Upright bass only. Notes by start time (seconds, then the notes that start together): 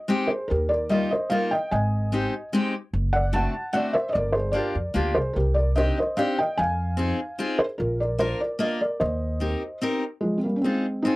0.51 D#2
1.72 G#1
2.93 F#1
4.15 G1
4.75 F2
4.95 D2
5.15 C2
5.36 C2
6.59 F2
7.80 A#1
9.01 D#2